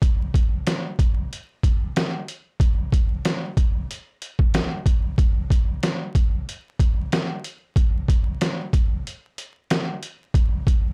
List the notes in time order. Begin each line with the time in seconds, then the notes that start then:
0.02 kick, closed hi-hat
0.34 kick, closed hi-hat
0.67 snare, closed hi-hat
0.99 kick, closed hi-hat
1.33 closed hi-hat
1.63 kick, closed hi-hat
1.96 snare, closed hi-hat
2.28 closed hi-hat
2.60 kick, closed hi-hat
2.92 kick, closed hi-hat
3.25 snare, closed hi-hat
3.57 kick, closed hi-hat
3.91 closed hi-hat
4.22 closed hi-hat
4.39 kick
4.54 snare, closed hi-hat
4.86 kick, closed hi-hat
5.18 kick, closed hi-hat
5.50 kick, closed hi-hat
5.83 snare, closed hi-hat
6.15 kick, closed hi-hat
6.49 closed hi-hat
6.79 kick, closed hi-hat
7.12 snare, closed hi-hat
7.44 closed hi-hat
7.76 kick, closed hi-hat
8.08 kick, closed hi-hat
8.41 snare, closed hi-hat
8.73 kick, closed hi-hat
9.07 closed hi-hat
9.38 closed hi-hat
9.70 snare, closed hi-hat
10.03 closed hi-hat
10.34 kick, closed hi-hat
10.67 kick, closed hi-hat